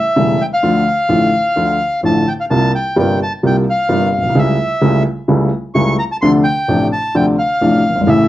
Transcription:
Already playing: E5
0.16 E1 E2 C#3 G3 A3 E4
0.42 G5
0.54 F5
0.63 D2 D3 F3 A3 F4
1.09 A1 A2 D3 F3 A3 F4
1.56 D2 D3 F3 A3 F4
2.03 A1 A2 D3 F3 A3 F4 A5
2.28 G5
2.40 F5
2.50 C2 C3 G3 A#3 F4 A5
2.75 G5
2.96 G1 G2 C3 G3 A#3 F4 G5
3.23 A5
3.43 C2 C3 G3 A#3 F4 G5
3.70 F5
3.88 G1 G2 C3 G3 A#3 F4
4.18 A#1
4.23 B1
4.29 C2
4.35 C#2 C#3 G3 A3 E4 E5
4.81 C#2 C#3 G3 A3 E4
5.28 C#2 C#3 G3 A3 E4
5.75 C#2 C#3 G3 A3 E4 C#6
5.99 A#5
6.12 A5
6.21 D2 C3 D3 F3 A3 D4 C6
6.43 G5
6.68 A1 A2 C3 F3 A3 D4
6.92 A5
7.14 D2 C3 D3 F3 A3 D4 G5
7.38 F5
7.61 A1 A2 C3 F3 A3 D4
7.89 F#1
7.95 G1
8.01 G#1
8.07 A1 A2 C#3 E3 A3 E4 E5

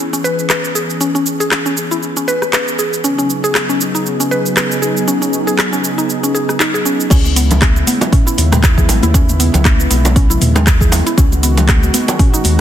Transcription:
Already playing: E3 B3 C#4 G#4
0.13 C#4, shaker
0.24 B4, shaker
0.39 shaker
0.50 B4, cross-stick, clap, shaker
0.65 shaker
0.75 G#4, shaker
0.90 shaker
1.01 C#4, shaker
1.15 C#4, shaker
1.26 shaker
1.40 G#4, shaker
1.51 cross-stick, clap, shaker
1.66 C#4, shaker
1.77 shaker
1.91 E4, shaker
2.03 shaker
2.17 C#4, shaker
2.28 B4, shaker
2.42 cross-stick, shaker
2.53 B4, cross-stick, clap, shaker
2.68 shaker
2.79 G#4, shaker
2.93 shaker
3.04 C#3 F#3 B3 C#4 D#4 G#4, shaker
3.18 C#4, shaker
3.30 shaker
3.44 G#4, shaker
3.55 cross-stick, clap, shaker
3.69 C#4, shaker
3.81 shaker
3.95 D#4, shaker
4.06 shaker
4.20 C#4, shaker
4.31 B4, shaker
4.46 shaker
4.57 B4, cross-stick, clap, shaker
4.72 shaker
4.82 G#4, shaker
4.97 shaker
5.08 C#4, shaker
5.22 C#4, shaker
5.33 shaker
5.47 G#4, shaker
5.59 cross-stick, clap, shaker
5.73 C#4, shaker
5.84 shaker
5.98 D#4, shaker
6.10 shaker
6.23 C#4, shaker
6.34 G#4, shaker
6.49 cross-stick, shaker
6.60 D#4, cross-stick, clap, shaker
6.74 G#4, shaker
6.85 C#4, shaker
7.00 shaker
7.10 C#2 C#3 G#3 B3 C#4 E4, kick, closed hi-hat, crash, high bongo, shaker
7.26 muted conga, shaker
7.36 B3, open hi-hat, shaker
7.51 closed hi-hat, low bongo, muted conga, low conga, shaker
7.61 C#4, kick, cross-stick, clap, closed hi-hat, high conga, shaker
7.76 muted conga, shaker
7.87 B3, open hi-hat, high conga, shaker
8.01 closed hi-hat, high bongo, low bongo, muted conga, shaker
8.13 C#4, kick, mid tom, open hi-hat, shaker
8.27 E4, shaker
8.38 D#2, open hi-hat, muted conga, shaker
8.52 G#3, cross-stick, closed hi-hat, mid tom, low bongo, high conga, shaker
8.63 kick, cross-stick, clap, closed hi-hat, muted conga, shaker
8.78 G#4, kick, low conga, shaker
8.89 G#1, open hi-hat, low bongo, muted conga, shaker
9.03 D#2 E4, closed hi-hat, high conga, shaker
9.14 C#4, kick, closed hi-hat, high bongo, shaker
9.29 muted conga, shaker
9.40 B3, open hi-hat, shaker
9.54 C#2, closed hi-hat, low bongo, muted conga, low conga, shaker
9.65 C#4, kick, cross-stick, clap, closed hi-hat, high conga, shaker
9.80 muted conga, shaker
9.90 B1 B3, open hi-hat, high conga, shaker
10.05 closed hi-hat, high bongo, low bongo, shaker
10.16 C#4, kick, open hi-hat, shaker
10.30 E4, low conga, shaker
10.41 D#2, mid tom, open hi-hat, muted conga, high conga, shaker
10.55 G#3, cross-stick, closed hi-hat, low bongo, shaker
10.67 kick, cross-stick, clap, closed hi-hat, shaker
10.81 G#4, kick, low conga, shaker
10.92 open hi-hat, low bongo, muted conga, shaker
11.06 E4, closed hi-hat, shaker
11.18 C#2 D#3 B3 C#4 F#4, kick, closed hi-hat, high bongo, shaker
11.32 muted conga, shaker
11.43 B3, open hi-hat, shaker
11.57 closed hi-hat, low bongo, muted conga, low conga, shaker
11.68 C#4, kick, cross-stick, clap, closed hi-hat, high conga, shaker
11.83 muted conga, shaker
11.94 B3, open hi-hat, high conga, shaker
12.08 closed hi-hat, high bongo, low bongo, muted conga, shaker
12.19 C#4, kick, mid tom, open hi-hat, shaker
12.34 D#4, shaker
12.44 D#2, open hi-hat, muted conga, shaker

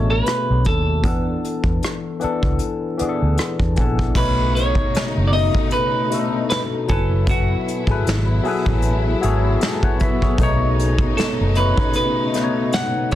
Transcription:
Already playing: A1 B2 A3 C#4 D4 G#4 C#5
0.10 B4
0.26 cross-stick, closed hi-hat
0.50 B1
0.65 D#2 A4, kick, closed hi-hat
1.03 E2 E3 B3 D4, kick, closed hi-hat
1.07 A4
1.44 closed hi-hat
1.64 E2, kick
1.83 cross-stick, closed hi-hat
2.19 E3 B3 D4, closed hi-hat
2.24 A4, muted fingered electric bass stroke
2.43 C#2, kick
2.59 closed hi-hat
2.98 E3 B3 D4, muted fingered electric bass stroke, closed hi-hat
3.02 G#4
3.09 A4
3.22 D2
3.38 cross-stick, closed hi-hat
3.60 E2, kick
3.76 A#1 E3 B3 D4, kick, closed hi-hat
3.81 A4
3.99 kick
4.15 B1 B2 C#3 A3 D#4 B4, kick, crash
4.19 C#5
4.55 C#5, closed hi-hat
4.75 kick
4.95 muted fingered electric bass stroke, snare, closed hi-hat
5.17 F#1
5.27 B2 D5
5.32 A3 D#4 D#5, open hi-hat
5.55 kick
5.71 B4, closed hi-hat
6.10 B2 A3 D4, closed hi-hat
6.14 A4
6.19 D#4
6.50 B4, snare, closed hi-hat
6.87 F#1 B2 F#3 B3 E4 A4 G#5, kick, closed hi-hat
6.92 B4
7.27 F#4, kick, closed hi-hat
7.68 closed hi-hat
7.87 G#1 F#3 E4 G#4 A4, kick
7.91 B4
8.07 G#1, snare, closed hi-hat
8.43 F#3 E4 G#4 A4, open hi-hat
8.48 B4
8.66 A1, kick
8.82 closed hi-hat
9.21 G#1 F#3 E4 G#4 A4, closed hi-hat
9.26 C#5
9.61 E5 A5, snare, closed hi-hat
9.83 C#5 F#5, kick
10.00 B4 E5, kick, closed hi-hat
10.22 G#4 C#5, kick
10.38 B1 B2 C#3 A3 D#4, kick, closed hi-hat
10.43 C#5
10.79 closed hi-hat
10.98 kick
11.17 A4, muted fingered electric bass stroke, snare, closed hi-hat
11.41 F#1
11.55 B2 A3 D#4 B4, closed hi-hat
11.59 C#5
11.78 kick
11.93 B4, closed hi-hat
12.33 B2 A3 D#4, snare, closed hi-hat
12.37 B4
12.44 C#5
12.73 F#5, snare, closed hi-hat
13.10 G#2 B2 F#3 E4, closed hi-hat

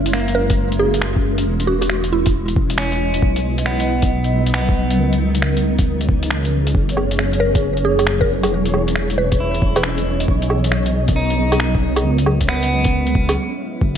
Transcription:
Already playing: F#1 G#3 C#4 E4 F#4 A#4 E5
0.06 closed hi-hat
0.13 A#3, finger snap
0.28 closed hi-hat
0.35 A#4
0.50 kick, closed hi-hat
0.72 closed hi-hat
0.79 G#4
0.94 closed hi-hat
1.02 finger snap
1.16 kick
1.38 closed hi-hat
1.46 E1
1.60 closed hi-hat
1.67 F#4
1.75 E4
1.81 F#4, closed hi-hat
1.90 finger snap
2.04 closed hi-hat
2.12 E4
2.26 B4 D#5, kick, closed hi-hat
2.48 closed hi-hat
2.56 kick
2.70 closed hi-hat
2.78 C#4, finger snap
2.92 closed hi-hat
3.14 closed hi-hat
3.22 B1 F#3, kick
3.36 D#4, closed hi-hat
3.58 B3, closed hi-hat
3.66 B3, finger snap
3.80 closed hi-hat
4.02 A#4, kick, closed hi-hat
4.24 closed hi-hat
4.46 closed hi-hat
4.54 B3, finger snap
4.69 kick
4.90 closed hi-hat
4.99 C#2 E3
5.13 closed hi-hat
5.35 closed hi-hat
5.42 C#5, finger snap
5.57 closed hi-hat
5.64 G#4
5.78 C#4, kick, closed hi-hat
6.01 closed hi-hat
6.09 kick
6.23 closed hi-hat
6.30 finger snap
6.45 closed hi-hat
6.67 closed hi-hat
6.75 F#1 F#3 C#4 C#5, kick
6.89 closed hi-hat
6.97 low woodblock
7.08 A#3, closed hi-hat
7.19 finger snap
7.33 closed hi-hat
7.40 A#4
7.55 E4, kick, closed hi-hat
7.77 closed hi-hat
7.85 G#4
7.99 closed hi-hat, low woodblock
8.07 finger snap
8.21 A#4, kick
8.43 closed hi-hat, low woodblock
8.51 E1 E3
8.65 closed hi-hat
8.74 low woodblock
8.85 B3, closed hi-hat
8.96 finger snap
9.10 closed hi-hat
9.18 B4
9.32 D#5, kick, closed hi-hat
9.40 E4
9.54 closed hi-hat
9.62 kick
9.76 B4, closed hi-hat, low woodblock
9.83 finger snap
9.98 closed hi-hat
10.20 closed hi-hat
10.28 B1 F#3, kick
10.42 closed hi-hat
10.50 low woodblock
10.57 A#4
10.64 closed hi-hat
10.72 finger snap
10.86 closed hi-hat
11.08 kick, closed hi-hat
11.16 D#4
11.30 closed hi-hat
11.52 closed hi-hat, low woodblock
11.60 finger snap
11.75 kick
11.96 closed hi-hat, low woodblock
12.05 C#2 G#3
12.18 closed hi-hat
12.25 C#4, low woodblock
12.41 kick, closed hi-hat
12.48 B3, finger snap
12.63 closed hi-hat
12.84 kick, closed hi-hat
13.07 closed hi-hat
13.15 kick
13.29 closed hi-hat, low woodblock
13.81 F#1, kick

